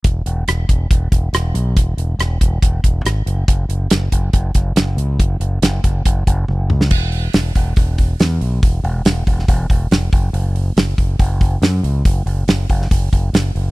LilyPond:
<<
  \new Staff \with { instrumentName = "Fingered electric bass" } { \clef bass \time 4/4 \key fis \mixolydian \tempo 4 = 140 e,,8 e,,8 e,,8 e,,8 e,,8 e,,8 e,,8 b,,8 | e,,8 e,,8 e,,8 e,,8 r8 e,,8 gis,,8 fis,,8 | fis,,8 fis,,8 fis,,8 fis,,8 fis,,8 fis,,8 fis,,8 cis,8 | fis,,8 fis,,8 fis,,8 fis,,8 fis,,8 fis,,8 fis,,8 cis,8 |
e,,4 e,,8 e,,8 e,,4 e,8 b,,8 | e,,8 e,,8 e,,8 e,,8 e,,8 e,,8 f,,8 fis,,8 | fis,,4 fis,,8 fis,,8 fis,,4 fis,8 cis,8 | fis,,8 fis,,8 fis,,8 fis,,8 fis,,8 fis,,8 fis,,8 fis,,8 | }
  \new DrumStaff \with { instrumentName = "Drums" } \drummode { \time 4/4 <hh bd>8 hh8 <hh ss>8 <hh bd>8 <hh bd>8 <hh bd>8 <hh ss>8 hh8 | <hh bd>8 hh8 <hh ss>8 <hh bd>8 <hh bd>8 <hh bd>8 <hh ss>8 hh8 | <hh bd>8 hh8 <hh sn>8 <hh bd>8 <hh bd>8 <hh bd>8 <hh sn>8 hh8 | <hh bd>8 hh8 <hh sn>8 <hh bd>8 <hh bd>8 <hh bd>8 tommh8 toml16 sn16 |
<cymc bd>8 hho8 <hho sn>8 <hho bd>8 <hho bd>8 <hho bd>8 <hho sn>8 hho8 | <hho bd>8 hho8 <hho sn>8 <hho bd>16 sn16 <hho bd>8 <hho bd>8 <hho sn>8 <hho bd>8 | hho8 hho8 <hho sn>8 <hho bd>8 <hho bd>8 <hho bd>8 <hho sn>8 hho8 | <hho bd>8 hho8 <hho sn>8 <hho bd>16 sn16 <hho bd>8 <hho bd>8 <hho sn>8 hho8 | }
>>